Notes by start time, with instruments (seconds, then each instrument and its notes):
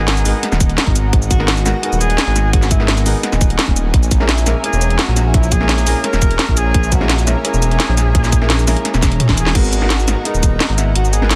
Already playing: analog synth pad B3 D#5 F#5 A#5, tenor saxophone G#4
0.00 detuned saw bass G#1, grand piano G#3 B3 D#4 F#4 A#4
0.08 snare, closed hi-hat
0.17 closed hi-hat, cabasa
0.24 detuned saw bass G#1, grand piano G#3 B3 D#4 F#4 A#4, open hi-hat, cabasa
0.43 snare, closed hi-hat
0.52 detuned saw bass D#1, snare, cabasa
0.60 kick, closed hi-hat, cabasa
0.69 closed hi-hat
0.78 snare, closed hi-hat
0.87 detuned saw bass G#1, kick
0.96 closed hi-hat, cabasa
1.13 detuned saw bass G#1, analog synth pad G#5, kick, closed hi-hat
1.22 cabasa
1.30 tenor saxophone F#4, kick, closed hi-hat, cabasa
1.39 detuned saw bass G#1, grand piano G#3 B3 D#4 F#4 A#4, snare
1.48 snare, closed hi-hat
1.57 closed hi-hat, cabasa
1.65 detuned saw bass G#1, grand piano G#3 B3 D#4 F#4 A#4, tenor saxophone F#4, snare, closed hi-hat, cabasa
1.82 grand piano G#3 B3 D#4 F#4 A#4, closed hi-hat
1.92 detuned saw bass D#1, cabasa
2.00 tenor saxophone G#4, closed hi-hat, cabasa
2.10 closed hi-hat
2.18 snare, closed hi-hat
2.27 detuned saw bass G#1
2.36 snare, closed hi-hat, cabasa
2.53 detuned saw bass G#1, tenor saxophone F#4, kick, closed hi-hat
2.62 snare, cabasa
2.70 tenor saxophone E4, kick, closed hi-hat, cabasa
2.79 detuned saw bass G#1, grand piano G#3 B3 D#4 F#4 A#4, snare
2.88 snare, closed hi-hat
2.97 closed hi-hat, cabasa
3.04 detuned saw bass G#1, grand piano G#3 B3 D#4 F#4 A#4, tenor saxophone D#4, open hi-hat, cabasa
3.23 snare, closed hi-hat
3.32 detuned saw bass D#1, snare, cabasa
3.41 kick, closed hi-hat, cabasa
3.50 closed hi-hat
3.59 snare, closed hi-hat
3.68 detuned saw bass D#1, kick
3.76 closed hi-hat, cabasa
3.94 detuned saw bass A#1, analog synth pad C#5 E5 A#5, kick, closed hi-hat
4.03 cabasa
4.11 kick, closed hi-hat, cabasa
4.20 detuned saw bass A#1, grand piano G#3 A#3 C#4 E4 A#4, snare
4.29 tenor saxophone E4, snare, closed hi-hat
4.38 closed hi-hat, cabasa
4.46 detuned saw bass A#1, grand piano G#3 A#3 C#4 E4 A#4, snare, closed hi-hat, cabasa
4.62 grand piano G#3 A#3 C#4 E4 A#4, tenor saxophone G#4, closed hi-hat
4.73 detuned saw bass E1, cabasa
4.81 closed hi-hat, cabasa
4.90 closed hi-hat
4.99 tenor saxophone F#4, snare, closed hi-hat
5.08 detuned saw bass A#1
5.16 snare, closed hi-hat, cabasa
5.34 detuned saw bass A#1, tenor saxophone E4, kick, closed hi-hat
5.43 cabasa
5.52 tenor saxophone G#4, kick, closed hi-hat, cabasa
5.60 detuned saw bass A#1, grand piano G#3 A#3 C#4 E4 A#4, snare
5.69 snare, closed hi-hat
5.78 closed hi-hat, cabasa
5.86 detuned saw bass A#1, grand piano G#3 A#3 C#4 E4 A#4, open hi-hat, cabasa
6.04 tenor saxophone A#4, snare, closed hi-hat
6.13 detuned saw bass E1, snare, cabasa
6.22 kick, closed hi-hat, cabasa
6.31 closed hi-hat
6.39 snare, closed hi-hat
6.49 detuned saw bass A#1, kick
6.57 tenor saxophone G#4, closed hi-hat, cabasa
6.74 detuned saw bass A#1, kick, closed hi-hat
6.83 cabasa
6.92 tenor saxophone F#4, kick, closed hi-hat, cabasa
7.00 detuned saw bass A#1, grand piano G#3 A#3 C#4 E4 A#4, snare
7.09 snare, closed hi-hat
7.19 closed hi-hat, cabasa
7.26 detuned saw bass A#1, grand piano G#3 A#3 C#4 E4 A#4, tenor saxophone E4, snare, closed hi-hat, cabasa
7.38 tenor saxophone A#4
7.43 grand piano G#3 A#3 C#4 E4 A#4, tenor saxophone G#4, closed hi-hat
7.54 detuned saw bass E1, cabasa
7.62 closed hi-hat, cabasa
7.71 closed hi-hat
7.80 snare, closed hi-hat
7.89 detuned saw bass A#1
7.97 snare, closed hi-hat, cabasa
8.15 detuned saw bass A#1, kick, closed hi-hat
8.24 snare, cabasa
8.32 kick, closed hi-hat, cabasa
8.41 detuned saw bass A#1, grand piano G#3 A#3 C#4 E4 A#4, snare
8.50 snare, closed hi-hat
8.59 closed hi-hat, cabasa
8.66 detuned saw bass A#1, grand piano G#3 A#3 C#4 E4 A#4, snare, open hi-hat, cabasa
8.77 closed hi-hat
8.85 snare, closed hi-hat
8.94 detuned saw bass E1, snare, cabasa
9.03 kick, snare, closed hi-hat, cabasa
9.12 closed hi-hat
9.20 closed hi-hat, mid tom
9.29 detuned saw bass E1, kick, snare, closed hi-hat
9.37 tenor saxophone G#4, closed hi-hat, cabasa
9.46 snare
9.54 detuned saw bass G#1, grand piano G#3 B3 D#4 F#4 A#4, analog synth pad B3 D#5 F#5 A#5, tenor saxophone F#4, kick, closed hi-hat, crash
9.64 cabasa
9.73 closed hi-hat, cabasa
9.81 detuned saw bass G#1, grand piano G#3 B3 D#4 F#4 A#4, snare
9.90 snare, closed hi-hat
9.99 cabasa
10.07 detuned saw bass G#1, grand piano G#3 B3 D#4 F#4 A#4, snare, closed hi-hat, cabasa
10.24 grand piano G#3 B3 D#4 F#4 A#4, tenor saxophone D#4, closed hi-hat
10.34 detuned saw bass D#1, cabasa
10.43 kick, closed hi-hat, cabasa
10.60 snare, closed hi-hat
10.69 detuned saw bass G#1
10.78 tenor saxophone E4, snare, closed hi-hat, cabasa
10.95 detuned saw bass G#1, tenor saxophone F#4, closed hi-hat
11.05 cabasa
11.13 tenor saxophone G#4, closed hi-hat, cabasa
11.22 detuned saw bass G#1, grand piano G#3 B3 D#4 F#4 A#4, snare
11.31 snare, closed hi-hat